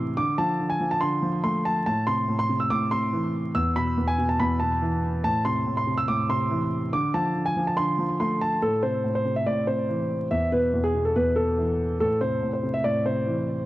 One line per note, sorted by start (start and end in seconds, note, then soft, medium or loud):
0.00 0.19 A2 loud
0.00 0.19 C3 medium
0.00 0.17 E3 medium
0.00 0.13 C6 medium
0.17 0.58 D3 loud
0.17 0.36 D6 medium
0.38 0.79 F3 medium
0.38 0.68 A5 medium
0.59 1.00 D3 medium
0.69 0.89 G#5 medium
0.80 1.21 F3 medium
0.91 1.00 A5 medium
1.01 1.86 D3 medium
1.01 1.41 C6 medium
1.22 1.86 F3 medium
1.43 1.86 A3 medium
1.43 1.63 C6 medium
1.65 1.84 A5 medium
1.86 2.27 A2 medium
1.86 2.05 A5 medium
2.07 2.48 C3 medium
2.07 2.37 C6 medium
2.28 2.69 A2 medium
2.39 2.58 C6 medium
2.49 2.90 C3 medium
2.60 2.69 E6 medium
2.70 3.55 A2 loud
2.70 2.89 D6 medium
2.91 3.55 C3 medium
2.91 3.51 C6 medium
3.13 3.55 E3 medium
3.55 3.96 E2 loud
3.55 3.74 E6 medium
3.76 4.17 B2 medium
3.76 4.06 B5 medium
3.97 4.38 E2 medium
4.08 4.27 G#5 medium
4.18 4.59 B2 medium
4.29 4.38 A5 medium
4.40 5.24 E2 loud
4.40 4.59 B5 medium
4.60 5.24 B2 medium
4.60 5.20 A5 medium
4.82 5.24 E3 medium
5.24 5.65 A2 loud
5.24 5.43 A5 medium
5.45 5.86 C3 medium
5.45 5.75 C6 medium
5.67 6.07 A2 medium
5.77 5.96 C6 medium
5.87 6.28 C3 medium
5.98 6.07 E6 medium
6.08 6.93 A2 loud
6.08 6.27 D6 medium
6.29 6.93 C3 medium
6.29 6.89 C6 medium
6.50 6.93 E3 medium
6.93 7.34 D3 loud
6.93 7.12 D6 medium
7.14 7.55 F3 medium
7.14 7.44 A5 medium
7.35 7.76 D3 medium
7.46 7.65 G#5 medium
7.56 7.97 F3 medium
7.67 7.77 A5 medium
7.77 8.62 D3 medium
7.77 8.17 C6 medium
7.98 8.62 F3 medium
8.20 8.62 A3 medium
8.20 8.39 C6 medium
8.41 8.60 A5 medium
8.62 9.03 A2 medium
8.62 8.81 A4 medium
8.83 9.24 C3 medium
8.83 9.13 C5 medium
9.04 9.45 A2 medium
9.15 9.34 C5 medium
9.25 9.66 C3 medium
9.36 9.45 E5 medium
9.46 10.31 A2 medium
9.46 9.65 D5 medium
9.67 10.31 C3 medium
9.67 10.27 C5 medium
9.89 10.31 E3 medium
10.31 10.72 E2 medium
10.31 10.50 E5 medium
10.52 10.93 B2 medium
10.52 10.82 B4 medium
10.73 11.14 E2 medium
10.84 11.03 G#4 medium
10.94 11.35 B2 medium
11.05 11.15 A4 medium
11.16 12.00 E2 medium
11.16 11.35 B4 medium
11.36 12.00 B2 medium
11.36 11.96 A4 medium
11.58 12.00 E3 medium
12.00 12.41 A2 medium
12.00 12.19 A4 medium
12.21 12.62 C3 medium
12.21 12.51 C5 medium
12.42 12.83 A2 medium
12.53 12.72 C5 medium
12.63 13.04 C3 medium
12.74 12.83 E5 medium
12.84 13.66 A2 medium
12.84 13.03 D5 medium
13.05 13.66 C3 medium
13.05 13.65 C5 medium
13.27 13.66 E3 medium